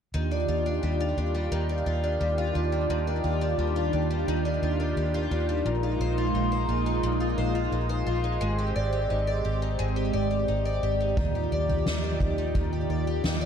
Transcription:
0.13 D#2 D#3 D4 F4 G4
0.31 D4
0.48 D#2 F4
0.66 D4
0.83 D#2 G3
1.00 F4
1.17 D#2 D4
1.35 G3
1.52 D#2 D#3
1.69 D4
1.86 D#2 F4
2.04 D4
2.21 D#2 G3
2.38 F4
2.55 D#2 D4
2.72 G3
2.90 D#2 D#3
3.07 D4
3.24 D#2 F4
3.41 D4
3.58 D#2 G3
3.76 F4
3.93 D#2 D4
4.11 G3
4.28 D#2 D#3
4.45 D4
4.62 D#2 F4
4.80 D4
4.97 D#2 G3
5.14 F4
5.31 D#2 D4
5.49 G3
5.65 A#1 A#2 G#3 A#3 D#4
5.83 F4
6.00 A#1 C5
6.18 F4
6.34 A#1 D#4
6.52 C5
6.69 A#1 F4
6.86 D#4
7.03 A#1 A#2
7.20 F4
7.38 A#1 C5
7.55 F4
7.72 A#1 D#4
7.89 C5
8.06 A#1 F4
8.24 D#4
8.40 G#1 G#3 C4 G4
8.59 G4
8.76 G#1 D5
8.93 G4
9.10 G#1 D#4
9.27 D5
9.45 G#1 G4
9.62 D#4
9.79 G#1 G#3
9.96 G4
10.13 G#1 D5
10.31 G4
10.48 G#1 D#4
10.65 D5
10.83 G#1 G4
11.00 D#4
11.17 D#2 D#3 F4 D5, kick, floor tom
11.35 G4
11.52 D#2 D5
11.69 G4, floor tom
11.86 D#2 D#4, snare
12.04 D5
12.20 D#2 G4, kick, floor tom
12.38 D#4
12.55 D#2 D#3, kick, floor tom
12.73 G4
12.90 D#2 D5
13.07 G4
13.24 D#2 D#4, snare
13.41 D5

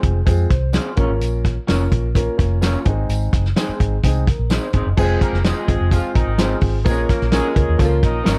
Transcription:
Already playing: G#3 C4 F4 G#4
0.03 F1, kick, closed hi-hat
0.26 F2 G#3 C4 F4 G#4, kick, closed hi-hat, tambourine
0.50 C2 C5, kick, snare, closed hi-hat
0.73 C4 F4 G#4 C5, snare, closed hi-hat, tambourine
0.96 A#1 A#3 C#4 F4 A#4 C#5, kick, closed hi-hat
1.10 G#1
1.21 A#1, closed hi-hat, tambourine
1.45 kick, snare, closed hi-hat
1.67 F1 A#3 C#4 F4 A#4 C#5, snare, closed hi-hat, tambourine
1.92 A#1, kick, closed hi-hat
2.15 A#3 C#4 F4 A#4, kick, closed hi-hat, tambourine
2.38 F1 A#3 C#4 F4 A#4, kick, snare, closed hi-hat
2.61 A#3 C#4 F4 A#4 C#5, snare, closed hi-hat, tambourine
2.85 G#1 G#3 C4 D#4 G#4, kick, closed hi-hat
3.09 G#1, closed hi-hat, tambourine
3.32 F#1, kick, snare, closed hi-hat
3.45 snare
3.56 G#3 C4 D#4 G#4 C5, snare, closed hi-hat, tambourine
3.69 muted fingered electric bass stroke
3.80 G#1, kick, closed hi-hat
4.04 C2 G#3 C4 D#4 G#4, kick, closed hi-hat, tambourine
4.27 A#4, kick, snare, closed hi-hat
4.39 A#1
4.50 C4 D#4 G#4 C5, snare, closed hi-hat, tambourine
4.73 G#1 C4 D#4 G#4 C5 D#5, kick, closed hi-hat
4.86 F#1
4.97 F1 G#3 C4 F4 G#4, kick, crash, tambourine
5.21 A#3 A#4, kick, closed hi-hat
5.33 F1, snare
5.44 G#3 C4 F4 G#4 C5, snare, closed hi-hat, tambourine
5.68 G#1 G#3 C4 F4 G#4, kick, closed hi-hat
5.81 F1
5.91 F3 G#3 C4 F4 G#4, kick, closed hi-hat, tambourine
6.14 A#1 D#3 D#4, kick, closed hi-hat
6.27 G#1
6.38 G#3 C4 F4 G#4 C5, snare, closed hi-hat, tambourine
6.61 G#1, kick, open hi-hat
6.85 A#1 G#3 A#3 C4 F4 G#4 A#4, kick, closed hi-hat, tambourine
6.91 C#4
7.09 A#3 A#4, kick, snare, closed hi-hat
7.21 A#1, snare
7.32 G#3 A#3 C#4 F4 G#4 A#4 C#5, snare, closed hi-hat, tambourine
7.55 C#2 A#3 C#4 F4 A#4, kick, closed hi-hat
7.69 D#2
7.78 C#2 F3 A#3 C#4 F4 A4, kick, closed hi-hat, tambourine
7.85 A#4
8.02 A#1 D#3 D#4, kick, snare, closed hi-hat
8.23 A#3 C#4 F4 A#4 C#5, snare, closed hi-hat, tambourine
8.27 G#1

